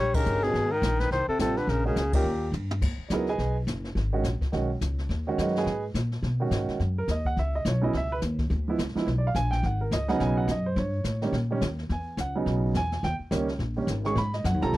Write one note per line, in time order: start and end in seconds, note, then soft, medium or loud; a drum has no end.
0.00 0.25 A#1 medium
0.00 0.17 G3 medium
0.00 0.16 C#5 medium
0.14 0.46 C#3 medium
0.14 0.52 C#4 medium
0.14 0.53 D#4 medium
0.14 0.53 G4 soft
0.14 0.44 A#4 medium
0.14 0.53 A#4 medium
0.14 kick medium
0.14 ride medium
0.26 0.53 G1 medium
0.26 hi-hat pedal soft
0.43 0.73 B2 medium
0.43 0.73 G#4 medium
0.43 snare soft
0.53 0.81 G#1 medium
0.53 brush sweep soft
0.53 kick soft
0.53 snare soft
0.71 1.00 D#3 medium
0.71 1.02 A#4 medium
0.82 1.10 A#1 medium
0.82 kick soft
0.82 snare medium
0.82 hi-hat pedal medium
1.00 1.10 D#3 medium
1.00 1.12 B4 medium
1.00 snare soft
1.11 1.27 C2 medium
1.11 1.27 D#3 medium
1.11 1.28 C5 medium
1.11 brush sweep soft
1.11 kick soft
1.11 snare soft
1.28 1.39 C3 medium
1.28 1.39 A4 medium
1.28 muted upright bass stroke soft
1.39 1.67 A1 medium
1.39 1.59 C3 medium
1.39 1.55 G3 medium
1.39 1.55 C4 medium
1.39 1.55 F4 soft
1.39 1.59 A4 medium
1.39 1.56 A4 medium
1.39 kick soft
1.39 snare medium
1.39 hi-hat pedal medium
1.57 1.70 D3 medium
1.57 1.71 B4 medium
1.57 snare soft
1.67 1.95 A#1 medium
1.67 1.85 C#3 medium
1.67 1.86 A#4 medium
1.67 brush sweep soft
1.67 kick soft
1.67 snare soft
1.85 2.12 C#3 medium
1.85 1.95 G#3 medium
1.85 1.96 C#4 soft
1.85 1.96 F#4 soft
1.85 2.13 G#4 medium
1.85 1.96 A#4 medium
1.96 2.23 C#2 medium
1.96 kick soft
1.96 snare medium
1.96 hi-hat pedal soft
2.13 2.51 A#2 medium
2.13 2.24 C#4 soft
2.13 2.24 D#4 soft
2.13 2.25 G4 medium
2.13 2.52 G4 medium
2.13 2.25 A#4 medium
2.13 kick medium
2.13 ride medium
2.24 2.51 D#2 medium
2.24 brush sweep soft
2.52 2.80 G2 medium
2.52 hi-hat pedal soft
2.52 mid tom soft
2.71 mid tom medium
2.81 2.97 D#2 medium
2.81 brush sweep soft
2.81 kick medium
2.81 snare soft
2.81 crash medium
2.98 muted upright bass stroke soft
3.09 3.38 C#2 medium
3.09 3.26 F#3 medium
3.09 3.26 B3 medium
3.09 3.27 E4 soft
3.09 3.11 D5 soft
3.09 kick soft
3.09 snare medium
3.09 hi-hat pedal medium
3.13 3.28 D#4 soft
3.13 3.28 G#4 medium
3.13 3.27 A#4 medium
3.13 3.28 B4 soft
3.13 3.28 D#5 medium
3.27 3.55 G#4 medium
3.27 3.55 B4 medium
3.27 3.55 D#5 medium
3.27 3.55 G#5 medium
3.27 snare soft
3.38 3.66 B1 medium
3.38 brush sweep soft
3.38 kick soft
3.38 snare soft
3.67 3.95 F#1 medium
3.67 kick soft
3.67 snare soft
3.67 hi-hat pedal soft
3.84 snare soft
3.95 4.23 G#1 medium
3.95 brush sweep soft
3.95 kick soft
3.95 snare soft
4.13 4.23 D#3 medium
4.13 4.23 G#3 medium
4.13 4.24 C#4 medium
4.13 4.24 F#4 medium
4.24 4.40 A#1 medium
4.24 kick soft
4.24 snare medium
4.24 hi-hat pedal medium
4.41 muted upright bass stroke soft
4.41 kick medium
4.41 snare soft
4.52 4.80 B1 medium
4.52 4.68 D#3 medium
4.52 4.68 G#3 medium
4.52 4.68 C#4 medium
4.52 4.69 F#4 medium
4.52 brush sweep soft
4.52 snare soft
4.81 5.08 C#2 medium
4.81 kick soft
4.81 snare soft
4.81 hi-hat pedal medium
4.98 snare soft
5.09 5.37 D#2 medium
5.09 brush sweep soft
5.09 kick soft
5.09 snare soft
5.27 5.64 D#3 medium
5.27 5.64 G#3 medium
5.27 5.65 C#4 medium
5.27 5.65 F#4 medium
5.38 5.65 F#2 medium
5.38 5.56 D#4 soft
5.38 5.56 G#4 soft
5.38 5.56 B4 soft
5.38 5.56 D#5 medium
5.38 kick soft
5.38 snare medium
5.38 hi-hat pedal soft
5.48 snare soft
5.55 5.83 G#4 medium
5.55 5.83 B4 medium
5.55 5.83 D#5 medium
5.55 5.83 G#5 medium
5.55 snare soft
5.66 5.94 G#2 medium
5.66 brush sweep soft
5.66 kick soft
5.66 snare soft
5.94 6.22 A#2 medium
5.94 kick soft
5.94 snare soft
5.94 hi-hat pedal soft
6.12 snare soft
6.22 6.50 B2 medium
6.22 brush sweep soft
6.22 kick soft
6.22 snare soft
6.40 6.78 D#3 medium
6.40 6.78 G#3 medium
6.40 6.78 C#4 medium
6.40 6.78 F#4 medium
6.51 6.67 G#2 medium
6.51 kick soft
6.51 snare medium
6.51 hi-hat pedal soft
6.68 muted upright bass stroke soft
6.68 snare soft
6.80 7.07 F#2 medium
6.80 brush sweep soft
6.80 kick soft
6.80 snare soft
6.98 7.09 A#4 medium
7.08 7.36 D#2 medium
7.08 7.26 D#5 medium
7.08 kick soft
7.08 snare medium
7.08 hi-hat pedal soft
7.25 7.37 F#5 medium
7.25 kick soft
7.37 7.64 C#2 medium
7.37 7.54 E5 medium
7.37 brush sweep soft
7.37 snare soft
7.55 7.66 D#5 medium
7.65 7.93 B1 medium
7.65 7.83 C#5 medium
7.65 kick soft
7.65 snare medium
7.65 hi-hat pedal soft
7.82 7.92 C#3 medium
7.82 7.92 F#3 medium
7.82 7.93 B3 medium
7.82 7.93 E4 medium
7.82 7.94 D#5 medium
7.93 8.21 C#2 medium
7.93 8.12 E5 medium
7.93 brush sweep soft
7.93 kick soft
7.93 snare soft
8.12 8.19 B4 medium
8.22 8.50 D#2 medium
8.22 kick soft
8.22 snare soft
8.22 hi-hat pedal soft
8.38 kick medium
8.38 snare soft
8.50 8.78 D2 medium
8.50 brush sweep soft
8.50 snare soft
8.68 8.78 F3 medium
8.68 8.78 G#3 medium
8.68 8.79 B3 medium
8.68 8.79 E4 medium
8.79 8.94 C#2 medium
8.79 kick soft
8.79 snare medium
8.79 hi-hat pedal medium
8.88 snare soft
8.95 9.06 F3 medium
8.95 9.06 G#3 medium
8.95 9.06 B3 medium
8.95 9.07 E4 medium
8.95 muted upright bass stroke soft
8.95 snare soft
8.98 snare soft
9.06 9.34 B1 medium
9.06 brush sweep soft
9.06 kick soft
9.06 snare soft
9.18 9.27 D5 medium
9.27 9.36 F5 medium
9.35 9.63 A#1 medium
9.35 9.52 G#5 loud
9.35 kick soft
9.35 snare medium
9.35 hi-hat pedal soft
9.51 9.63 G5 medium
9.51 snare soft
9.63 9.91 G#1 medium
9.63 9.81 F#5 medium
9.63 brush sweep soft
9.63 kick soft
9.63 snare soft
9.81 9.92 A#4 medium
9.91 10.19 C#2 medium
9.91 10.09 D#5 medium
9.91 kick soft
9.91 snare medium
9.91 hi-hat pedal medium
10.08 10.46 C#3 medium
10.08 10.46 F#3 medium
10.08 10.47 B3 medium
10.08 10.47 D#4 medium
10.08 10.20 F#5 medium
10.08 snare soft
10.20 10.47 B1 medium
10.20 10.37 G#5 medium
10.20 brush sweep medium
10.20 kick soft
10.20 snare soft
10.37 10.48 F#5 medium
10.48 10.76 F#2 medium
10.48 10.66 D#5 medium
10.48 kick soft
10.48 snare medium
10.48 hi-hat pedal medium
10.66 10.77 C5 medium
10.76 11.03 G2 medium
10.76 11.20 C#5 medium
10.76 brush sweep soft
10.76 kick soft
10.76 snare soft
11.04 11.32 A2 medium
11.04 kick soft
11.04 snare medium
11.04 hi-hat pedal soft
11.22 11.32 D#3 medium
11.22 11.33 G3 medium
11.22 11.33 A#3 medium
11.22 11.33 C#4 medium
11.22 snare soft
11.32 11.61 A#2 medium
11.32 brush sweep soft
11.32 kick soft
11.32 snare soft
11.51 11.61 D#3 medium
11.51 11.61 G3 medium
11.51 11.62 A#3 medium
11.51 11.62 C#4 medium
11.61 11.89 D#2 medium
11.61 kick soft
11.61 snare medium
11.61 hi-hat pedal medium
11.78 snare soft
11.89 12.17 E2 medium
11.89 12.18 G#5 medium
11.89 brush sweep soft
11.89 kick soft
11.89 snare soft
12.17 12.45 C#2 medium
12.17 12.36 F#5 medium
12.17 kick soft
12.17 snare medium
12.17 hi-hat pedal medium
12.36 12.73 C#3 medium
12.36 12.73 F#3 medium
12.36 12.73 B3 soft
12.36 12.74 D#4 medium
12.46 12.74 B1 medium
12.46 brush sweep soft
12.46 kick soft
12.46 snare soft
12.74 13.02 E2 medium
12.74 13.02 G#5 medium
12.74 kick soft
12.74 snare medium
12.74 hi-hat pedal soft
12.92 snare soft
13.03 13.19 D#2 medium
13.03 13.14 G5 medium
13.03 brush sweep soft
13.03 kick soft
13.03 snare soft
13.19 muted upright bass stroke soft
13.31 13.58 C#2 medium
13.31 13.46 D#3 medium
13.31 13.47 G3 medium
13.31 13.47 A#3 medium
13.31 13.47 C#4 medium
13.31 kick soft
13.31 snare medium
13.31 hi-hat pedal medium
13.48 snare soft
13.59 13.86 A#1 medium
13.59 brush sweep soft
13.59 kick soft
13.59 snare soft
13.77 13.87 D#3 medium
13.77 13.87 G3 medium
13.77 13.88 A#3 medium
13.77 13.88 C#4 medium
13.87 14.15 G#1 medium
13.87 kick soft
13.87 snare medium
13.87 hi-hat pedal soft
14.05 14.15 D#3 medium
14.05 14.15 G#3 medium
14.05 14.16 C#4 soft
14.05 14.16 G#4 medium
14.05 14.17 C#6 medium
14.05 snare soft
14.15 14.43 G#2 medium
14.15 14.34 B5 medium
14.15 brush sweep soft
14.15 kick soft
14.15 snare soft
14.33 14.45 D#5 medium
14.33 snare soft
14.44 14.54 F#2 medium
14.44 14.62 F#5 medium
14.44 kick soft
14.44 snare medium
14.44 hi-hat pedal soft
14.54 14.63 D#2 soft
14.61 14.72 B1 medium
14.61 14.77 G3 medium
14.61 14.77 C4 medium
14.61 14.77 F4 medium
14.61 14.77 A4 medium
14.61 14.73 A#5 loud
14.61 snare soft
14.73 14.77 F2 medium
14.73 brush sweep soft
14.73 kick soft
14.73 snare soft